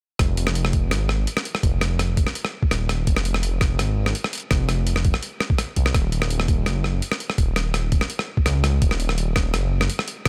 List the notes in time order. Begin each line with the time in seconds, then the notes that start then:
0.19 F1, kick, cross-stick, closed hi-hat
0.37 closed hi-hat
0.47 cross-stick
0.55 closed hi-hat
0.65 cross-stick
0.73 kick, closed hi-hat
0.91 G#1, cross-stick, closed hi-hat
1.09 cross-stick
1.27 closed hi-hat
1.37 cross-stick
1.45 closed hi-hat
1.55 cross-stick
1.63 F1, kick, closed hi-hat
1.81 cross-stick, closed hi-hat
1.99 cross-stick, closed hi-hat
2.17 kick, closed hi-hat
2.27 cross-stick
2.35 closed hi-hat
2.45 cross-stick
2.63 kick
2.71 D#1, cross-stick, closed hi-hat
2.89 cross-stick, closed hi-hat
3.07 F1, kick, closed hi-hat
3.16 cross-stick
3.25 closed hi-hat
3.34 cross-stick
3.43 closed hi-hat
3.61 kick, cross-stick, closed hi-hat
3.79 G#1, cross-stick, closed hi-hat
4.06 cross-stick
4.15 closed hi-hat
4.24 cross-stick
4.33 closed hi-hat
4.35 closed hi-hat
4.38 closed hi-hat
4.40 closed hi-hat
4.51 F1, kick, cross-stick, closed hi-hat
4.69 cross-stick, closed hi-hat
4.87 closed hi-hat
4.96 cross-stick
5.05 kick, closed hi-hat
5.14 cross-stick
5.23 closed hi-hat
5.40 cross-stick
5.50 kick
5.58 cross-stick, closed hi-hat
5.76 C2, kick, closed hi-hat
5.86 cross-stick
5.95 D#1, kick, cross-stick, closed hi-hat
6.12 closed hi-hat
6.22 cross-stick
6.30 closed hi-hat
6.40 cross-stick
6.48 kick, closed hi-hat
6.66 F#1, cross-stick, closed hi-hat
6.84 cross-stick
7.02 closed hi-hat
7.12 cross-stick
7.20 closed hi-hat
7.30 cross-stick
7.38 D#1, kick, closed hi-hat
7.56 cross-stick, closed hi-hat
7.74 cross-stick, closed hi-hat
7.92 kick, closed hi-hat
8.01 cross-stick
8.10 closed hi-hat
8.19 cross-stick
8.37 kick
8.46 C#2, cross-stick, closed hi-hat
8.64 cross-stick, closed hi-hat
8.82 D#1, kick, closed hi-hat
8.91 cross-stick
9.00 closed hi-hat
9.09 cross-stick
9.18 closed hi-hat
9.36 kick, cross-stick, closed hi-hat
9.54 F#1, cross-stick, closed hi-hat
9.81 cross-stick
9.90 closed hi-hat
9.99 cross-stick
10.08 closed hi-hat
10.25 D#1, cross-stick, closed hi-hat